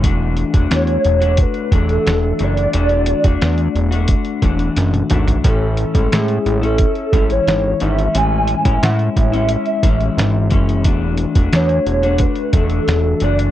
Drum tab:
HH |x-xxxxxxxxxxx-xx|xxxxxxxxxxxxxxxx|x-xxxxxxxxxxx-xx|x-xxxxxxxxxxx-xx|
SD |----o-------o---|----o-------o---|----o-------o---|----o-------o---|
T1 |----------------|-------------o--|----------------|----------------|
T2 |----------------|--------------o-|----------------|----------------|
FT |----------------|---------------o|----------------|----------------|
BD |o--o----o-o-----|---o----o-o-----|o--o----o-o-----|---o--o---o---o-|

HH |x-xxxxxxxxxxx-xx|
SD |----o-------o---|
T1 |----------------|
T2 |----------------|
FT |----------------|
BD |o--o----o-o-----|